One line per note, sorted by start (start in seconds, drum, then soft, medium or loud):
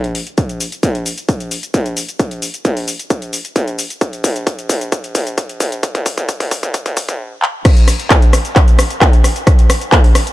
0.04 closed hi-hat medium
0.15 open hi-hat loud
0.27 closed hi-hat medium
0.38 kick loud
0.38 closed hi-hat medium
0.38 shaker soft
0.49 closed hi-hat medium
0.49 shaker soft
0.60 open hi-hat loud
0.60 shaker medium
0.72 closed hi-hat medium
0.72 shaker soft
0.83 kick loud
0.83 closed hi-hat medium
0.83 shaker soft
0.95 closed hi-hat soft
0.95 shaker soft
1.06 open hi-hat loud
1.06 shaker medium
1.18 closed hi-hat medium
1.18 shaker soft
1.29 kick loud
1.29 closed hi-hat medium
1.29 shaker soft
1.40 closed hi-hat medium
1.40 shaker soft
1.51 open hi-hat loud
1.51 shaker medium
1.63 closed hi-hat medium
1.63 shaker soft
1.74 kick loud
1.74 closed hi-hat medium
1.74 shaker soft
1.86 closed hi-hat soft
1.86 shaker soft
1.97 open hi-hat loud
1.97 shaker medium
2.09 closed hi-hat medium
2.09 shaker soft
2.19 kick loud
2.19 closed hi-hat medium
2.19 shaker soft
2.31 closed hi-hat medium
2.31 shaker soft
2.42 open hi-hat loud
2.42 shaker medium
2.54 closed hi-hat soft
2.54 shaker soft
2.65 kick loud
2.65 closed hi-hat medium
2.65 shaker soft
2.77 open hi-hat medium
2.77 shaker soft
2.88 open hi-hat loud
2.88 shaker medium
2.99 closed hi-hat medium
2.99 shaker soft
3.10 kick loud
3.10 closed hi-hat medium
3.10 shaker soft
3.22 closed hi-hat medium
3.22 shaker soft
3.33 open hi-hat loud
3.33 shaker medium
3.45 closed hi-hat medium
3.45 shaker soft
3.56 kick loud
3.56 closed hi-hat medium
3.56 shaker soft
3.68 closed hi-hat soft
3.68 shaker soft
3.79 open hi-hat loud
3.79 shaker medium
3.90 closed hi-hat soft
3.90 shaker soft
4.01 kick loud
4.01 closed hi-hat medium
4.01 shaker soft
4.13 closed hi-hat medium
4.13 shaker soft
4.24 kick loud
4.24 open hi-hat loud
4.24 shaker medium
4.36 closed hi-hat medium
4.36 shaker soft
4.47 kick loud
4.47 closed hi-hat medium
4.47 shaker soft
4.59 closed hi-hat medium
4.59 shaker soft
4.69 kick loud
4.69 open hi-hat loud
4.69 shaker medium
4.81 closed hi-hat medium
4.81 shaker soft
4.92 kick loud
4.92 closed hi-hat medium
4.92 shaker soft
5.04 closed hi-hat medium
5.04 shaker soft
5.15 kick loud
5.15 open hi-hat loud
5.15 shaker medium
5.27 closed hi-hat medium
5.27 shaker soft
5.38 kick loud
5.38 closed hi-hat medium
5.38 shaker soft
5.49 closed hi-hat medium
5.49 shaker soft
5.60 kick loud
5.60 open hi-hat loud
5.60 shaker medium
5.72 closed hi-hat medium
5.72 shaker soft
5.83 kick loud
5.83 closed hi-hat medium
5.83 shaker soft
5.95 kick medium
5.95 closed hi-hat medium
5.95 shaker soft
6.06 kick loud
6.06 open hi-hat loud
6.06 shaker medium
6.18 kick medium
6.18 closed hi-hat medium
6.18 shaker soft
6.29 kick loud
6.29 closed hi-hat medium
6.29 shaker soft
6.40 kick medium
6.40 open hi-hat medium
6.40 shaker soft
6.51 kick loud
6.51 open hi-hat loud
6.51 shaker medium
6.63 kick medium
6.63 closed hi-hat medium
6.63 shaker soft
6.74 kick loud
6.74 closed hi-hat medium
6.74 shaker soft
6.86 kick medium
6.86 closed hi-hat medium
6.86 shaker soft
6.97 kick loud
6.97 open hi-hat loud
6.97 shaker medium
7.08 kick medium
7.08 closed hi-hat medium
7.08 shaker soft
7.42 clap medium
7.65 kick loud
7.65 cross-stick medium
7.65 closed hi-hat loud
7.65 crash loud
7.65 shaker soft
7.77 closed hi-hat medium
7.77 shaker soft
7.88 cross-stick medium
7.88 open hi-hat loud
7.88 shaker medium
8.00 closed hi-hat medium
8.00 shaker soft
8.10 kick loud
8.10 cross-stick medium
8.10 clap loud
8.10 closed hi-hat loud
8.10 shaker soft
8.22 closed hi-hat medium
8.22 shaker soft
8.33 cross-stick medium
8.33 open hi-hat loud
8.33 shaker medium
8.45 closed hi-hat medium
8.45 shaker soft
8.56 kick loud
8.56 cross-stick medium
8.56 clap medium
8.56 closed hi-hat loud
8.56 shaker soft
8.68 closed hi-hat medium
8.68 shaker soft
8.79 cross-stick medium
8.79 open hi-hat loud
8.79 shaker medium
8.90 closed hi-hat medium
8.90 shaker soft
9.01 kick loud
9.01 cross-stick medium
9.01 clap loud
9.01 closed hi-hat loud
9.01 shaker soft
9.13 closed hi-hat medium
9.13 shaker soft
9.24 cross-stick medium
9.24 open hi-hat loud
9.24 shaker medium
9.36 closed hi-hat medium
9.36 shaker soft
9.47 kick loud
9.47 cross-stick medium
9.47 closed hi-hat loud
9.47 shaker soft
9.59 closed hi-hat medium
9.59 shaker soft
9.70 cross-stick medium
9.70 open hi-hat loud
9.70 shaker medium
9.81 closed hi-hat medium
9.81 shaker soft
9.92 kick loud
9.92 cross-stick medium
9.92 clap loud
9.92 closed hi-hat loud
9.92 shaker soft
10.04 open hi-hat medium
10.04 shaker soft
10.15 cross-stick medium
10.15 open hi-hat loud
10.15 shaker medium
10.27 closed hi-hat medium
10.27 shaker soft